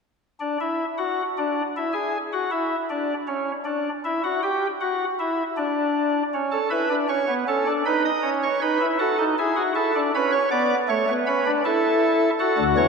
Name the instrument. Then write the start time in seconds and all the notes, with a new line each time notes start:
pipe organ
0.40 D4
0.61 E4
0.98 F#4
1.38 D4
1.77 E4
1.93 G#4
2.33 F#4
2.51 E4
2.90 D4
3.28 C#4
3.65 D4
4.05 E4
4.24 F#4
4.43 G4
4.81 F#4
5.19 E4
5.57 D4
6.34 C#4
6.52 A4
6.70 E4 B4
6.89 D4
7.09 C#4 C#5
7.28 B3
7.48 C#4 A4
7.67 D4
7.86 D#4 B4
8.05 D#5
8.22 C#4
8.43 C#5
8.62 D#4 B4
8.81 E4
8.99 F#4 A4
9.18 D#4
9.38 E4 G#4
9.56 F#4
9.75 E4 A4
9.95 D4
10.15 C#4 B4
10.32 C#5
10.51 B3 D5
10.88 A3 C#5
11.09 B3
11.27 C#4 B4
11.46 D4
11.65 E4 A4
12.39 F#4 A4
12.58 D2 D3
12.77 E2 E3 C#5